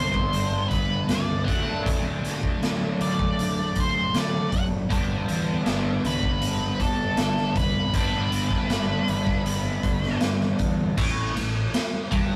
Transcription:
Already playing: fingered electric bass C2, overdriven electric guitar G2 D3 G3 B3 D4, lead electric guitar C5
0.14 kick, high conga
0.33 fingered electric bass G1, closed hi-hat
0.53 high conga
0.68 fingered electric bass D2, lead electric guitar B4, kick, closed hi-hat
1.07 fingered electric bass C#2, lead electric guitar D5, snare, closed hi-hat
1.29 low conga
1.44 overdriven electric guitar D3 F#3, lead electric guitar F#5, kick
1.48 fingered electric bass D2, overdriven electric guitar A3 D4, closed hi-hat, low conga
1.86 fingered electric bass D2, kick, closed hi-hat
2.25 snare, closed hi-hat
2.43 kick
2.62 fingered electric bass D2, snare, closed hi-hat
2.82 high conga
3.00 fingered electric bass D2, lead electric guitar D5, closed hi-hat, low conga
3.19 kick, high conga
3.39 fingered electric bass D2, closed hi-hat
3.58 high conga
3.76 fingered electric bass D2, kick, closed hi-hat
3.80 lead electric guitar C5
4.14 fingered electric bass D3, snare, closed hi-hat
4.18 lead electric guitar D5
4.34 low conga
4.52 fingered electric bass F#1, lead electric guitar F#5, kick, closed hi-hat, low conga
4.89 fingered electric bass G1, overdriven electric guitar G2 D3 G3 B3 D4, kick, closed hi-hat
5.29 fingered electric bass E2, closed hi-hat
5.66 fingered electric bass G1, snare, closed hi-hat
5.85 high conga
6.04 fingered electric bass C2, lead electric guitar B4, closed hi-hat, low conga
6.23 kick, high conga
6.41 fingered electric bass G1, closed hi-hat
6.61 high conga
6.80 fingered electric bass D2, lead electric guitar A4, kick, closed hi-hat
7.16 fingered electric bass G1, snare, closed hi-hat
7.37 snare, low conga
7.56 fingered electric bass C2, lead electric guitar B4, kick, closed hi-hat, low conga
7.94 fingered electric bass G1, overdriven electric guitar G2 D3 G3 B3 D4, lead electric guitar B4, kick, closed hi-hat
8.32 closed hi-hat
8.51 kick, snare
8.68 fingered electric bass G1, snare, closed hi-hat
8.90 high conga
9.07 fingered electric bass G1, closed hi-hat, low conga
9.26 kick, snare, high conga
9.44 fingered electric bass G1, closed hi-hat
9.65 high conga
9.83 fingered electric bass G1, kick, closed hi-hat, high conga
10.03 snare
10.21 fingered electric bass G2, snare, closed hi-hat
10.41 snare, high conga, low conga
10.59 fingered electric bass E2, kick, closed hi-hat, low conga
10.97 fingered electric bass A1, overdriven electric guitar A2, kick, crash, low conga
11.36 fingered electric bass A1, overdriven electric guitar A2, ride, high conga, low conga
11.74 snare, ride
11.93 high conga
12.12 fingered electric bass G1, overdriven electric guitar G2, kick, ride, low conga

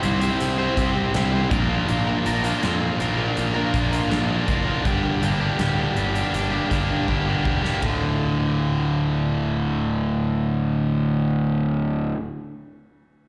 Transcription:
Already playing: distorted electric guitar C3 G3
0.01 picked electric bass C2, distorted electric guitar C4 E4 G4 C5, closed hi-hat
0.20 distorted electric guitar C4 E4 G4 C5, muted steel-string acoustic guitar stroke, closed hi-hat
0.40 picked electric bass C2, muted steel-string acoustic guitar stroke, closed hi-hat
0.58 distorted electric guitar C4 E4 G4 C5
0.76 picked electric bass C2, distorted electric guitar C4 E4 G4 C5, kick, closed hi-hat
0.94 steel-string acoustic guitar C4 E4 G4 C5
1.13 picked electric bass C2, distorted electric guitar C3 G3 C4 E4 G4 C5, snare, closed hi-hat
1.31 distorted electric guitar C4 E4 G4 C5
1.50 picked electric bass A#1, distorted electric guitar A#2 F3 A#3 D4 F4 A#4, kick, closed hi-hat
1.68 distorted electric guitar A#3 D4 F4 A#4
1.86 picked electric bass A#1, distorted electric guitar A#2 F3 A#3 D4 F4 A#4, closed hi-hat
2.06 steel-string acoustic guitar A#3 D4 F4 A#4
2.24 picked electric bass A#1, distorted electric guitar A#3 D4 F4 A#4, closed hi-hat
2.42 distorted electric guitar A#3 D4 F4 A#4, closed hi-hat
2.61 picked electric bass F2, distorted electric guitar A#2 F3 A#3 D4 F4 A#4, muted steel-string acoustic guitar stroke, snare, closed hi-hat
2.80 muted steel-string acoustic guitar stroke
2.98 picked electric bass A#1, distorted electric guitar A#3 D4 F4 A#4, closed hi-hat
3.17 distorted electric guitar A#3 D4 F4 A#4, muted steel-string acoustic guitar stroke
3.36 picked electric bass A#1, muted steel-string acoustic guitar stroke, closed hi-hat
3.54 distorted electric guitar A#3 D4 F4 A#4
3.72 picked electric bass A#1, distorted electric guitar A#3 D4 F4 A#4, kick, closed hi-hat
3.92 steel-string acoustic guitar A#3 D4 F4 A#4, closed hi-hat
4.09 picked electric bass A#1, distorted electric guitar A#2 F3 A#3 D4 F4 A#4, snare, closed hi-hat
4.28 distorted electric guitar A#3 D4 F4 A#4
4.46 picked electric bass F#1, distorted electric guitar A#3 D4 F4 A#4, kick, closed hi-hat
4.65 distorted electric guitar A#3 D4 F4 A#4
4.84 picked electric bass G1, distorted electric guitar G2 D3 G3 A#3 D4 G4, kick, closed hi-hat
5.03 steel-string acoustic guitar G3 A#3 D4 G4
5.21 picked electric bass G1, distorted electric guitar G3 A#3 D4 G4, closed hi-hat
5.40 distorted electric guitar G3 A#3 D4 G4
5.58 picked electric bass D1, distorted electric guitar G2 D3 G3 A#3 D4 G4, muted steel-string acoustic guitar stroke, snare, closed hi-hat
5.77 muted steel-string acoustic guitar stroke
5.95 picked electric bass G1, distorted electric guitar G3 A#3 D4 G4, closed hi-hat
6.14 distorted electric guitar G3 A#3 D4 G4, muted steel-string acoustic guitar stroke, closed hi-hat
6.32 picked electric bass G1, muted steel-string acoustic guitar stroke, closed hi-hat
6.51 distorted electric guitar G3 A#3 D4 G4
6.70 picked electric bass G1, distorted electric guitar G3 A#3 D4 G4, kick, closed hi-hat
6.88 steel-string acoustic guitar G3 A#3 D4 G4
7.07 picked electric bass G1, distorted electric guitar G2 D3 G3 A#3 D4 G4, kick
7.27 distorted electric guitar G3 A#3 D4 G4
7.44 picked electric bass E1, distorted electric guitar G3 A#3 D4 G4, kick
7.63 distorted electric guitar G3 A#3 D4 G4, snare
7.81 picked electric bass D1, distorted electric guitar D2 A2 D3, steel-string acoustic guitar A3, kick, ride
7.85 steel-string acoustic guitar F4

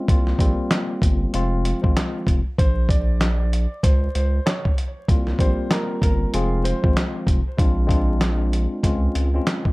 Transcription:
0.08 sub bass C2, tine electric piano G3 A#3 C4 F4, kick, closed hi-hat
0.27 snare
0.39 sub bass A#1, tine electric piano G3 A#3 C4 F4, kick, closed hi-hat
0.71 snare, closed hi-hat
1.02 sub bass G1, kick, closed hi-hat
1.33 sub bass F1, tine electric piano F3 G#3 C4 F4, closed hi-hat
1.65 closed hi-hat
1.82 sub bass G#1, tine electric piano F3 G#3 C4 F4, kick
1.97 snare, closed hi-hat
2.27 sub bass F1, kick, closed hi-hat
2.58 sub bass A#1, upright piano C5, kick, closed hi-hat
2.89 upright piano D5, kick, closed hi-hat
3.21 snare, closed hi-hat
3.53 closed hi-hat
3.83 sub bass C#2, upright piano C5, kick, closed hi-hat
4.15 sub bass C#2, upright piano C5, closed hi-hat
4.46 upright piano C#5, snare, closed hi-hat
4.65 kick
4.78 closed hi-hat
5.08 sub bass C2, tine electric piano G3 A#3 C4 F4, kick, closed hi-hat
5.27 snare
5.39 sub bass A#1, tine electric piano G3 A#3 C4 F4, upright piano C5, kick, closed hi-hat
5.71 upright piano A#4, snare, closed hi-hat
6.02 sub bass G1, upright piano A#4, kick, closed hi-hat
6.33 sub bass F1, tine electric piano F3 G#3 C4 F4, upright piano G#4, closed hi-hat
6.64 upright piano C5, closed hi-hat
6.82 sub bass G#1, tine electric piano F3 G#3 C4 F4, kick
6.97 snare, closed hi-hat
7.27 sub bass F1, kick, closed hi-hat
7.58 sub bass A#1, tine electric piano G#3 C4 D4 F4, kick, closed hi-hat
7.87 tine electric piano G#3 C4 D4 F4, kick, closed hi-hat
8.21 snare, closed hi-hat
8.53 closed hi-hat
8.83 sub bass C#2, tine electric piano G#3 C4 C#4 F4, kick, closed hi-hat
9.15 sub bass C#2, closed hi-hat
9.34 tine electric piano G#3 C4 C#4 F4
9.47 snare, closed hi-hat
9.65 kick

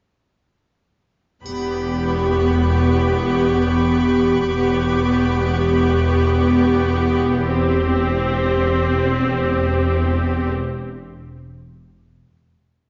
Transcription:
1.45 double bass section E1, cello section E2, viola section B3 G4, violin section B5, triangle
2.08 violin section C#6
2.67 violin section D6
4.48 double bass section E1, cello section E2, viola section B3 G4
7.51 viola section C4

